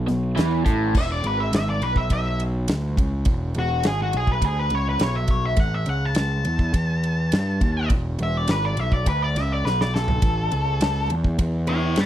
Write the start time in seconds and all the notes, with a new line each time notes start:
0.07 B1 B2, snare, closed hi-hat
0.36 E2 E3, snare, closed hi-hat
0.65 A1 A2, kick, closed hi-hat
0.95 E1 E5, kick, crash
1.12 D5
1.24 G#1 B4, ride
1.40 E5
1.53 G#1 E5, snare, ride
1.70 D5
1.82 B1 B4, ride
1.96 E5, kick
2.10 B1 E5, kick, ride
2.40 ride
2.68 D2, snare, ride
2.97 C#2, kick, ride
3.25 E1, kick, ride
3.54 E1, ride
3.59 F#4
3.83 G#1 G#4, snare, ride
4.02 F#4
4.13 B1 G#4, ride
4.27 kick
4.32 B4
4.42 D2 G#4, kick, ride
4.59 B4
4.70 C#2, ride
4.75 C#5
4.89 B4
4.99 B1 C#5, snare, ride
5.16 E5
5.28 C#5, kick, ride
5.46 E5
5.56 A1 F#5, kick, ride
5.74 E5
5.86 C#2 F#5, ride
6.05 A5
6.15 C#2, snare, ride
6.20 A5
6.45 E2, ride
6.59 kick
6.74 E2, kick, ride
7.03 ride
7.32 G2, snare, ride
7.61 D#2, kick, ride
7.90 E1, kick, ride
8.19 E1, ride
8.23 E5
8.37 D5
8.48 G#1 B4, snare, ride
8.65 D5
8.77 B1 E5, ride
8.92 D5, kick
9.06 D2 B4, kick, ride
9.23 D5
9.36 C#2 E5, snare, ride
9.52 D5
9.65 B1 B4, snare
9.81 D5, snare
9.95 A4, snare
10.08 floor tom
10.22 A1, kick, ride
10.51 C#2, ride
10.81 C#2, snare, ride
11.10 E2, ride
11.24 kick
11.39 E2, kick, ride
11.67 C#5 A5, ride
11.96 G2 G5, snare, ride
12.01 B5